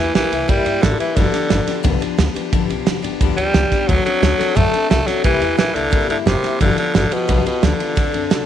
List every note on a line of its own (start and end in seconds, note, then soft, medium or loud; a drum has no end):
0.00 0.14 E3 loud
0.00 0.14 A#3 soft
0.00 0.15 E4 soft
0.00 0.15 G4 medium
0.14 0.25 A#1 medium
0.14 0.51 E3 loud
0.14 0.32 G3 medium
0.14 0.32 A#3 medium
0.14 0.32 E4 medium
0.14 0.31 G4 medium
0.14 snare loud
0.14 ride medium
0.31 0.42 C2 medium
0.31 0.48 A#3 soft
0.31 0.48 E4 medium
0.31 0.49 G4 medium
0.31 ride medium
0.48 0.60 G2 medium
0.48 0.65 C3 medium
0.48 0.66 G3 medium
0.48 0.84 G3 loud
0.48 0.66 A#3 medium
0.48 0.65 E4 medium
0.48 0.63 G4 medium
0.48 kick loud
0.48 ride medium
0.65 0.76 G2 medium
0.65 0.81 A#3 soft
0.65 0.82 E4 medium
0.65 0.82 G4 medium
0.65 ride medium
0.81 0.94 A1 medium
0.81 0.99 D3 medium
0.81 0.99 G3 medium
0.81 1.00 A#3 medium
0.81 0.99 E4 medium
0.81 0.97 G4 medium
0.81 snare loud
0.81 ride medium
0.98 1.17 E3 medium
0.98 1.17 A#3 soft
0.98 1.17 E4 soft
0.98 1.16 G4 medium
0.98 ride medium
1.16 1.27 G1 loud
1.16 1.34 G2 medium
1.16 1.84 D3 medium
1.16 1.34 D3 medium
1.16 1.34 F3 medium
1.16 1.33 B3 medium
1.16 1.32 D4 medium
1.16 1.31 G4 medium
1.16 kick loud
1.16 snare soft
1.16 ride medium
1.32 1.48 F3 soft
1.32 1.49 B3 soft
1.32 1.51 D4 soft
1.32 1.50 G4 medium
1.32 snare soft
1.32 ride medium
1.49 1.61 G1 medium
1.49 1.67 F3 medium
1.49 1.67 B3 medium
1.49 1.66 D4 medium
1.49 1.66 G4 medium
1.49 snare loud
1.49 ride medium
1.67 1.83 F3 medium
1.67 1.83 B3 medium
1.67 1.83 D4 medium
1.67 1.84 G4 medium
1.67 muted upright bass stroke medium
1.67 snare soft
1.67 ride medium
1.83 1.95 B1 medium
1.83 2.01 G2 medium
1.83 2.01 D3 loud
1.83 2.01 F3 loud
1.83 2.01 B3 loud
1.83 2.00 D4 medium
1.83 1.99 G4 loud
1.83 kick loud
1.83 ride medium
2.00 2.16 F3 medium
2.00 2.18 B3 medium
2.00 2.18 D4 medium
2.00 2.18 G4 medium
2.00 ride medium
2.18 2.29 D2 medium
2.18 2.35 F3 medium
2.18 2.36 B3 medium
2.18 2.34 D4 medium
2.18 2.33 G4 medium
2.18 snare loud
2.18 ride medium
2.34 2.52 F3 medium
2.34 2.52 B3 medium
2.34 2.53 D4 medium
2.34 2.52 G4 medium
2.34 muted upright bass stroke medium
2.34 ride medium
2.52 2.63 G1 loud
2.52 2.70 G2 medium
2.52 2.70 D3 loud
2.52 2.70 F3 medium
2.52 2.70 B3 loud
2.52 2.69 D4 loud
2.52 2.69 G4 medium
2.52 kick loud
2.52 ride medium
2.70 2.80 B1 medium
2.70 2.85 F3 medium
2.70 2.86 B3 medium
2.70 2.87 D4 medium
2.70 2.87 G4 medium
2.70 ride medium
2.86 2.97 F1 medium
2.86 3.04 F3 medium
2.86 3.03 B3 medium
2.86 3.02 D4 medium
2.86 3.01 G4 medium
2.86 snare loud
2.86 ride medium
3.02 3.14 G1 medium
3.02 3.20 F3 medium
3.02 3.21 B3 medium
3.02 3.21 D4 medium
3.02 3.20 G4 medium
3.02 ride medium
3.21 3.31 D2 medium
3.21 3.38 G2 medium
3.21 3.38 D3 medium
3.21 3.38 F3 loud
3.21 3.38 B3 loud
3.21 3.37 D4 loud
3.21 3.36 G4 medium
3.21 kick loud
3.21 ride medium
3.37 3.48 D2 medium
3.37 3.53 F3 soft
3.37 3.90 G3 loud
3.37 3.54 B3 medium
3.37 3.55 D4 medium
3.37 3.55 G4 medium
3.37 ride medium
3.54 3.65 C#2 medium
3.54 3.72 F3 medium
3.54 3.72 B3 medium
3.54 3.72 D4 medium
3.54 3.71 G4 medium
3.54 snare loud
3.54 ride medium
3.72 3.89 F3 soft
3.72 3.90 B3 soft
3.72 3.89 D4 medium
3.72 3.89 G4 medium
3.72 muted upright bass stroke medium
3.72 kick medium
3.72 snare soft
3.72 ride medium
3.88 4.00 D2 loud
3.88 4.06 D3 medium
3.88 4.04 F#3 loud
3.88 4.06 F#3 medium
3.88 4.06 C4 medium
3.88 4.05 D4 medium
3.88 4.03 A4 medium
3.88 kick loud
3.88 ride medium
4.05 4.58 F#3 loud
4.05 4.21 C4 soft
4.05 4.22 D4 medium
4.05 4.22 A4 medium
4.05 muted upright bass stroke medium
4.05 ride medium
4.22 4.33 D2 medium
4.22 4.39 F#3 medium
4.22 4.40 C4 medium
4.22 4.39 D4 medium
4.22 4.37 A4 medium
4.22 snare loud
4.22 ride medium
4.38 4.55 C4 soft
4.38 4.56 D4 medium
4.38 4.56 A4 medium
4.38 muted upright bass stroke medium
4.38 snare soft
4.38 ride medium
4.55 4.67 F#2 medium
4.55 4.73 D3 medium
4.55 4.73 F#3 medium
4.55 4.89 A3 loud
4.55 4.74 C4 medium
4.55 4.73 D4 medium
4.55 4.71 A4 medium
4.55 kick loud
4.55 ride medium
4.72 4.89 C4 soft
4.72 4.90 D4 medium
4.72 4.90 A4 medium
4.72 muted upright bass stroke medium
4.72 ride medium
4.89 5.01 B1 medium
4.89 5.07 F#3 medium
4.89 5.08 A3 loud
4.89 5.05 A4 medium
4.89 snare loud
4.89 ride medium
5.07 5.24 F#3 loud
5.07 5.25 C4 soft
5.07 5.25 D4 medium
5.07 5.24 A4 medium
5.07 muted upright bass stroke medium
5.07 snare soft
5.07 ride medium
5.24 5.35 C2 loud
5.24 5.41 C3 medium
5.24 5.56 E3 loud
5.24 5.42 G3 medium
5.24 5.42 A#3 medium
5.24 5.41 E4 medium
5.24 5.39 G4 medium
5.24 kick loud
5.24 ride medium
5.40 5.52 E2 loud
5.40 5.56 A#3 soft
5.40 5.58 E4 soft
5.40 5.58 G4 medium
5.40 ride medium
5.57 5.69 A#1 medium
5.57 5.76 E3 loud
5.57 5.75 G3 medium
5.57 5.75 A#3 medium
5.57 5.74 E4 medium
5.57 5.73 G4 medium
5.57 snare loud
5.57 ride medium
5.74 5.86 C2 medium
5.74 6.09 D3 loud
5.74 5.91 A#3 soft
5.74 5.91 E4 medium
5.74 5.92 G4 medium
5.74 ride medium
5.91 6.03 G2 medium
5.91 6.09 C3 medium
5.91 6.09 G3 medium
5.91 6.09 A#3 medium
5.91 6.09 E4 loud
5.91 6.07 G4 medium
5.91 kick loud
5.91 ride medium
6.08 6.20 G2 medium
6.08 6.17 D3 medium
6.08 6.25 A#3 soft
6.08 6.26 E4 medium
6.08 6.26 G4 medium
6.08 ride medium
6.25 6.37 F#1 medium
6.25 6.58 C3 medium
6.25 6.43 G3 medium
6.25 6.44 A#3 medium
6.25 6.44 E4 medium
6.25 6.42 G4 medium
6.25 snare loud
6.25 ride medium
6.43 6.61 A#3 soft
6.43 6.62 E4 soft
6.43 6.61 G4 medium
6.43 snare soft
6.43 ride medium
6.60 6.71 G1 medium
6.60 6.78 G2 medium
6.60 6.78 D3 medium
6.60 6.77 D3 loud
6.60 6.78 F3 medium
6.60 6.77 B3 medium
6.60 6.77 F4 medium
6.60 6.76 G4 medium
6.60 kick loud
6.60 ride medium
6.77 6.94 D3 medium
6.77 6.92 F3 soft
6.77 6.93 B3 medium
6.77 6.94 F4 soft
6.77 6.94 G4 medium
6.77 muted upright bass stroke medium
6.77 ride medium
6.94 7.05 G1 medium
6.94 7.14 D3 medium
6.94 7.11 F3 medium
6.94 7.11 B3 medium
6.94 7.10 F4 medium
6.94 7.09 G4 medium
6.94 snare loud
6.94 ride medium
7.10 7.46 B2 loud
7.10 7.27 F3 soft
7.10 7.28 B3 soft
7.10 7.28 F4 medium
7.10 7.28 G4 medium
7.10 muted upright bass stroke medium
7.10 ride medium
7.28 7.39 B1 medium
7.28 7.45 G2 medium
7.28 7.46 D3 medium
7.28 7.46 F3 medium
7.28 7.46 B3 medium
7.28 7.45 F4 medium
7.28 7.44 G4 medium
7.28 kick loud
7.28 ride medium
7.45 7.66 B2 medium
7.45 7.61 F3 soft
7.45 7.62 B3 medium
7.45 7.62 F4 medium
7.45 7.63 G4 medium
7.45 muted upright bass stroke medium
7.45 ride medium
7.62 7.74 D2 medium
7.62 8.46 D3 medium
7.62 7.80 F3 medium
7.62 7.80 B3 medium
7.62 7.79 F4 medium
7.62 7.78 G4 medium
7.62 snare loud
7.62 ride medium
7.80 7.96 F3 soft
7.80 7.96 B3 soft
7.80 7.97 F4 medium
7.80 7.97 G4 medium
7.80 muted upright bass stroke medium
7.80 ride medium
7.96 8.08 D2 loud
7.96 8.13 D3 medium
7.96 8.14 F#3 medium
7.96 8.14 C4 medium
7.96 8.13 D4 medium
7.96 8.12 A4 medium
7.96 kick loud
7.96 snare soft
7.96 ride medium
8.13 8.25 F#2 medium
8.13 8.30 C4 soft
8.13 8.31 D4 medium
8.13 8.31 A4 medium
8.13 ride medium
8.30 8.42 C2 medium
8.30 8.46 F#3 medium
8.30 8.46 C4 medium
8.30 8.46 D4 medium
8.30 8.46 A4 medium
8.30 snare loud
8.30 ride medium